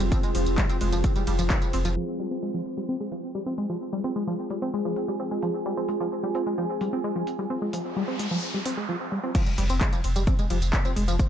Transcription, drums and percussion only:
0.00 closed hi-hat medium
0.00 tambourine medium
0.12 kick loud
0.12 closed hi-hat loud
0.12 ride medium
0.12 tambourine medium
0.23 closed hi-hat medium
0.23 tambourine soft
0.35 open hi-hat loud
0.35 ride medium
0.46 closed hi-hat medium
0.46 tambourine medium
0.58 kick loud
0.58 clap loud
0.58 closed hi-hat medium
0.58 ride medium
0.58 tambourine medium
0.69 closed hi-hat medium
0.69 tambourine soft
0.81 open hi-hat medium
0.81 ride medium
0.92 closed hi-hat medium
0.92 tambourine medium
1.04 kick loud
1.04 closed hi-hat loud
1.04 ride medium
1.04 tambourine medium
1.16 closed hi-hat medium
1.16 tambourine soft
1.27 open hi-hat loud
1.27 ride medium
1.39 closed hi-hat medium
1.39 tambourine medium
1.50 kick loud
1.50 clap loud
1.50 closed hi-hat medium
1.50 ride medium
1.50 tambourine medium
1.62 closed hi-hat medium
1.62 tambourine soft
1.73 open hi-hat medium
1.73 ride medium
1.85 closed hi-hat medium
1.85 tambourine medium
2.19 open hi-hat loud
2.66 open hi-hat medium
3.12 open hi-hat loud
3.58 open hi-hat medium
4.04 open hi-hat loud
4.50 open hi-hat medium
4.96 open hi-hat loud
5.42 open hi-hat medium
5.89 open hi-hat loud
6.35 open hi-hat medium
6.81 open hi-hat loud
7.27 open hi-hat loud
7.73 open hi-hat loud
8.19 open hi-hat medium
8.66 open hi-hat loud
9.35 kick loud
9.35 closed hi-hat loud
9.35 crash loud
9.35 tambourine medium
9.46 closed hi-hat medium
9.46 tambourine soft
9.58 open hi-hat loud
9.58 ride medium
9.70 closed hi-hat medium
9.70 tambourine medium
9.81 kick loud
9.81 clap loud
9.81 closed hi-hat medium
9.81 tambourine soft
9.93 closed hi-hat medium
9.93 tambourine soft
10.04 open hi-hat medium
10.04 ride medium
10.16 closed hi-hat medium
10.16 tambourine medium
10.27 kick loud
10.27 closed hi-hat loud
10.27 tambourine medium
10.39 closed hi-hat medium
10.39 tambourine soft
10.50 open hi-hat loud
10.50 ride medium
10.62 closed hi-hat medium
10.62 tambourine medium
10.73 kick loud
10.73 clap loud
10.73 closed hi-hat medium
10.73 tambourine medium
10.85 closed hi-hat medium
10.85 tambourine soft
10.96 open hi-hat medium
10.96 ride medium
11.08 closed hi-hat medium
11.08 tambourine medium
11.19 kick loud
11.19 closed hi-hat loud
11.19 tambourine medium

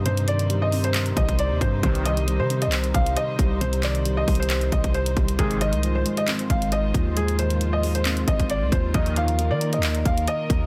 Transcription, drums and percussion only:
0.06 closed hi-hat medium
0.17 closed hi-hat medium
0.28 closed hi-hat medium
0.39 closed hi-hat medium
0.50 closed hi-hat medium
0.72 open hi-hat medium
0.84 closed hi-hat medium
0.94 clap loud
0.94 closed hi-hat medium
1.06 closed hi-hat medium
1.17 kick loud
1.17 closed hi-hat loud
1.29 kick medium
1.29 closed hi-hat medium
1.39 closed hi-hat medium
1.61 kick loud
1.61 closed hi-hat medium
1.83 kick loud
1.83 closed hi-hat medium
1.95 closed hi-hat medium
2.06 closed hi-hat medium
2.17 closed hi-hat medium
2.28 closed hi-hat medium
2.50 closed hi-hat medium
2.62 closed hi-hat medium
2.72 clap loud
2.72 closed hi-hat medium
2.84 closed hi-hat medium
2.94 kick loud
2.94 closed hi-hat medium
3.06 closed hi-hat medium
3.17 closed hi-hat medium
3.39 kick loud
3.39 closed hi-hat medium
3.61 closed hi-hat medium
3.73 closed hi-hat medium
3.83 clap loud
3.83 closed hi-hat medium
3.95 closed hi-hat medium
4.05 closed hi-hat medium
4.28 kick medium
4.28 closed hi-hat medium
4.28 open hi-hat medium
4.35 closed hi-hat medium
4.43 closed hi-hat medium
4.50 clap loud
4.50 closed hi-hat medium
4.61 closed hi-hat medium
4.72 kick loud
4.72 closed hi-hat medium
4.84 kick loud
4.84 closed hi-hat medium
4.94 closed hi-hat soft
5.06 closed hi-hat medium
5.17 kick loud
5.17 closed hi-hat soft
5.28 closed hi-hat medium
5.39 kick loud
5.39 closed hi-hat medium
5.51 closed hi-hat medium
5.61 closed hi-hat medium
5.73 closed hi-hat medium
5.83 closed hi-hat medium
6.06 closed hi-hat medium
6.17 closed hi-hat medium
6.28 clap loud
6.28 closed hi-hat medium
6.39 closed hi-hat medium
6.50 kick loud
6.50 closed hi-hat medium
6.62 closed hi-hat medium
6.72 closed hi-hat medium
6.94 kick loud
6.94 closed hi-hat medium
7.17 closed hi-hat medium
7.28 closed hi-hat medium
7.39 closed hi-hat medium
7.50 closed hi-hat medium
7.61 closed hi-hat medium
7.83 open hi-hat medium
7.95 closed hi-hat medium
8.05 clap loud
8.05 closed hi-hat medium
8.17 closed hi-hat medium
8.28 kick loud
8.28 closed hi-hat loud
8.40 kick medium
8.40 closed hi-hat medium
8.50 closed hi-hat medium
8.72 kick loud
8.72 closed hi-hat medium
8.94 kick loud
8.94 closed hi-hat medium
9.06 closed hi-hat medium
9.16 closed hi-hat medium
9.28 closed hi-hat medium
9.39 closed hi-hat medium
9.61 closed hi-hat medium
9.73 closed hi-hat medium
9.83 clap loud
9.83 closed hi-hat medium
9.95 closed hi-hat medium
10.05 kick loud
10.05 closed hi-hat medium
10.18 closed hi-hat medium
10.28 closed hi-hat medium
10.50 kick loud
10.50 closed hi-hat medium

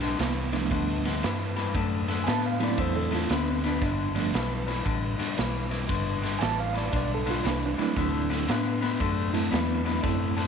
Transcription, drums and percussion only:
0.00 snare soft
0.00 ride medium
0.19 snare medium
0.19 ride medium
0.53 snare soft
0.53 ride medium
0.71 kick loud
0.71 ride medium
1.05 snare soft
1.05 ride medium
1.23 snare loud
1.23 ride medium
1.56 snare soft
1.56 ride medium
1.75 kick loud
1.75 ride medium
2.08 snare soft
2.08 ride medium
2.27 snare loud
2.27 ride medium
2.60 snare soft
2.60 ride medium
2.78 kick loud
2.78 ride medium
3.12 snare soft
3.12 ride medium
3.29 snare loud
3.29 ride medium
3.64 snare soft
3.64 ride medium
3.82 kick loud
3.82 snare soft
3.82 ride medium
4.16 snare soft
4.16 ride medium
4.34 snare loud
4.34 ride medium
4.68 snare soft
4.68 ride medium
4.86 kick loud
4.86 ride medium
5.19 snare soft
5.19 ride medium
5.38 snare loud
5.38 ride medium
5.71 snare soft
5.71 ride medium
5.89 kick loud
5.89 snare soft
5.89 ride medium
6.23 snare soft
6.23 ride medium
6.41 snare loud
6.41 ride medium
6.75 snare soft
6.75 ride medium
6.93 kick loud
6.93 snare soft
6.93 ride medium
7.27 snare soft
7.27 ride medium
7.45 snare loud
7.45 ride medium
7.79 snare soft
7.79 ride medium
7.96 kick loud
7.96 snare soft
7.96 ride medium
8.30 snare soft
8.30 ride medium
8.48 snare loud
8.48 ride medium
8.82 snare soft
8.82 ride medium
9.00 kick loud
9.00 ride medium
9.34 snare soft
9.34 ride medium
9.53 snare loud
9.53 ride medium
9.86 snare soft
9.86 ride medium
10.04 kick loud
10.04 snare soft
10.04 ride medium
10.37 snare soft
10.37 ride medium

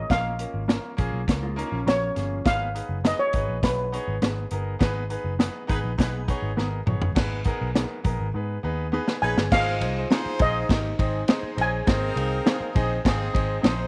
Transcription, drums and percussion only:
0.10 kick loud
0.10 snare loud
0.10 closed hi-hat medium
0.39 closed hi-hat medium
0.69 snare loud
0.69 closed hi-hat medium
0.98 kick medium
0.98 closed hi-hat medium
1.28 kick medium
1.28 snare loud
1.28 closed hi-hat medium
1.59 closed hi-hat medium
1.88 snare loud
1.88 closed hi-hat medium
2.16 snare soft
2.16 closed hi-hat medium
2.45 kick loud
2.45 snare loud
2.45 closed hi-hat medium
2.76 closed hi-hat medium
3.05 snare loud
3.05 closed hi-hat loud
3.33 kick medium
3.33 closed hi-hat medium
3.63 kick medium
3.63 snare loud
3.63 closed hi-hat loud
3.94 closed hi-hat medium
4.22 snare loud
4.22 closed hi-hat medium
4.51 closed hi-hat medium
4.81 kick loud
4.81 snare loud
4.81 closed hi-hat medium
5.10 closed hi-hat medium
5.40 snare loud
5.40 closed hi-hat medium
5.69 kick medium
5.69 closed hi-hat medium
5.99 kick medium
5.99 snare loud
5.99 closed hi-hat medium
6.28 kick medium
6.28 closed hi-hat medium
6.58 snare medium
6.87 mid tom medium
7.02 floor tom medium
7.16 kick loud
7.16 snare loud
7.16 crash medium
7.45 kick medium
7.45 closed hi-hat medium
7.75 snare loud
7.75 closed hi-hat loud
8.04 kick medium
8.04 closed hi-hat medium
9.08 snare medium
9.38 snare loud
9.52 kick loud
9.52 snare loud
9.52 crash loud
9.81 ride medium
10.11 snare loud
10.11 ride medium
10.39 kick loud
10.39 ride medium
10.69 kick medium
10.69 snare loud
10.69 ride medium
10.99 kick medium
10.99 ride medium
11.28 snare loud
11.28 ride medium
11.58 ride medium
11.87 kick loud
11.87 snare loud
11.87 ride medium
12.17 ride medium
12.47 snare loud
12.47 ride medium
12.76 kick loud
12.76 ride medium
13.05 kick medium
13.05 snare loud
13.05 ride medium
13.35 kick medium
13.35 ride medium
13.64 snare loud
13.64 ride medium

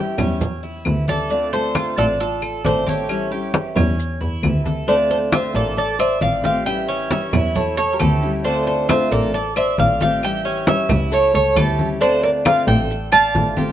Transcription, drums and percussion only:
0.18 low conga medium
0.18 claves medium
0.18 maracas medium
0.41 high conga soft
0.41 low conga medium
0.41 maracas medium
0.64 high conga soft
0.64 maracas soft
0.85 high conga medium
0.85 claves medium
0.85 maracas soft
1.08 high conga medium
1.08 maracas medium
1.31 high conga soft
1.31 maracas loud
1.53 high conga soft
1.53 maracas soft
1.75 high conga medium
1.75 claves medium
1.75 maracas soft
1.98 high conga soft
1.98 maracas medium
2.20 high conga soft
2.20 maracas medium
2.42 high conga soft
2.42 claves medium
2.42 maracas soft
2.65 high conga medium
2.65 maracas soft
2.87 high conga medium
2.87 maracas medium
3.09 high conga soft
3.09 claves medium
3.09 maracas medium
3.32 high conga soft
3.32 maracas soft
3.54 high conga loud
3.54 maracas soft
3.76 low conga medium
3.76 claves medium
3.76 maracas medium
3.99 high conga soft
3.99 maracas medium
4.21 high conga soft
4.21 maracas soft
4.43 high conga medium
4.43 claves medium
4.43 maracas soft
4.66 high conga medium
4.66 maracas medium
4.88 high conga soft
4.88 maracas loud
5.10 high conga soft
5.10 maracas soft
5.32 high conga loud
5.32 claves medium
5.32 maracas soft
5.54 high conga soft
5.54 maracas medium
5.77 high conga soft
5.77 maracas medium
5.99 high conga soft
5.99 claves medium
5.99 maracas soft
6.21 high conga medium
6.21 maracas soft
6.44 high conga medium
6.44 maracas medium
6.66 high conga soft
6.66 claves medium
6.66 maracas medium
6.89 high conga soft
6.89 maracas soft
7.11 high conga loud
7.11 maracas soft
7.33 low conga medium
7.33 claves medium
7.33 maracas medium
7.55 high conga soft
7.55 low conga medium
7.55 maracas medium
7.78 high conga soft
7.78 maracas soft
8.00 high conga medium
8.00 claves medium
8.00 maracas soft
8.22 maracas medium
8.45 high conga soft
8.45 maracas medium
8.67 high conga soft
8.67 maracas soft
8.89 high conga loud
8.89 claves medium
8.89 maracas soft
9.11 high conga soft
9.11 maracas medium
9.34 high conga soft
9.34 maracas medium
9.56 high conga soft
9.56 claves medium
9.56 maracas soft
9.78 high conga medium
9.78 maracas soft
10.00 high conga medium
10.00 maracas medium
10.23 high conga soft
10.23 claves medium
10.23 maracas loud
10.45 high conga soft
10.45 maracas soft
10.67 high conga loud
10.67 maracas soft
10.89 low conga loud
10.89 claves medium
10.89 maracas medium
11.12 high conga soft
11.12 maracas loud
11.34 high conga soft
11.34 maracas soft
11.56 high conga medium
11.56 claves medium
11.56 maracas soft
11.79 high conga medium
11.79 maracas medium
12.01 high conga soft
12.01 maracas loud
12.24 high conga soft
12.24 maracas soft
12.45 high conga loud
12.45 claves medium
12.45 maracas soft
12.68 high conga soft
12.68 maracas medium
12.90 high conga soft
12.90 maracas medium
13.12 high conga soft
13.12 claves medium
13.12 maracas soft
13.35 high conga medium
13.35 maracas soft
13.57 high conga medium
13.57 maracas medium

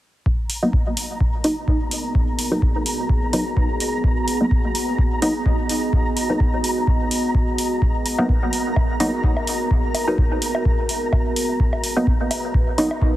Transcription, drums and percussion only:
0.26 kick loud
0.50 open hi-hat medium
0.73 kick loud
0.97 open hi-hat medium
1.21 kick loud
1.44 open hi-hat medium
1.68 kick loud
1.91 open hi-hat medium
2.15 kick loud
2.39 open hi-hat medium
2.62 kick loud
2.86 open hi-hat medium
3.09 kick loud
3.33 open hi-hat medium
3.57 kick loud
3.80 open hi-hat medium
4.04 kick loud
4.28 open hi-hat medium
4.51 kick loud
4.75 open hi-hat medium
4.99 kick loud
5.22 open hi-hat medium
5.46 kick loud
5.69 open hi-hat medium
5.93 kick loud
6.17 open hi-hat medium
6.40 kick loud
6.64 open hi-hat medium
6.87 kick loud
7.11 open hi-hat medium
7.35 kick loud
7.58 open hi-hat medium
7.82 kick loud
8.06 open hi-hat medium
8.19 low woodblock soft
8.29 kick loud
8.53 open hi-hat medium
8.76 kick loud
8.76 low woodblock soft
9.00 open hi-hat medium
9.24 kick loud
9.37 low woodblock soft
9.47 open hi-hat medium
9.71 kick loud
9.95 open hi-hat medium
9.95 low woodblock soft
10.18 kick loud
10.42 open hi-hat medium
10.55 low woodblock soft
10.65 kick loud
10.89 open hi-hat medium
11.13 kick loud
11.13 low woodblock soft
11.36 open hi-hat medium
11.60 kick loud
11.73 low woodblock soft
11.84 open hi-hat medium
12.07 kick loud
12.31 open hi-hat medium
12.31 low woodblock soft
12.54 kick loud
12.78 open hi-hat medium
12.91 low woodblock soft
13.02 kick loud

